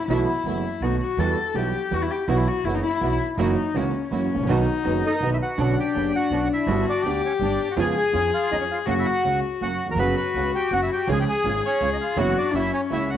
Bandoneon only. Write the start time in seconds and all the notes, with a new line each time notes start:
5.06 D#4 D#5
5.33 E4 E5
5.42 F#4 F#5
5.80 G4 G5
6.16 F#4 F#5
6.53 E4 E5
6.89 D4 D5
7.26 C#4 C#5
7.44 D4 D5
7.71 F#4 F#5
7.80 G#4 G#5
7.97 G#4 G#5
8.34 F4 F5
8.52 D#4 D#5
8.60 C#4 C#5
8.71 F4 F5
8.90 F#4 F#5
8.99 E4 E5
9.06 F#4 F#5
9.62 F#4 F#5
9.91 A#4 A#5
9.99 B4 B5
10.17 B4 B5
10.55 G4 G5
10.73 F#4 F#5
10.83 E4 E5
10.93 G4 G5
11.12 G#4 G#5
11.20 G4 G5
11.29 G#4 G#5
11.65 C#4 C#5
11.93 D#4 D#5
12.01 F4 F5
12.20 F#4 F#5
12.38 D4 D5
12.54 E4 E5
12.73 C#4 C#5
12.92 E4 E5
13.10 F#4 F#5